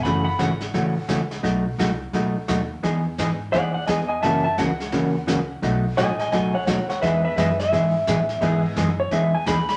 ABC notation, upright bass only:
X:1
M:4/4
L:1/8
Q:"Swing" 1/4=172
K:E
V:1 name="Upright bass" clef=bass
F,,,2 G,,,2 A,,,2 C,,2 | B,,,2 =C,,2 ^C,,2 D,,2 | E,,2 G,,2 D,,2 E,,2 | F,,2 C,,2 D,,2 C,,2 |
B,,,2 A,,,2 C,,2 D,,2 | E,,2 F,,2 G,,2 A,,2 | G,,2 F,,2 E,,2 D,,2 |]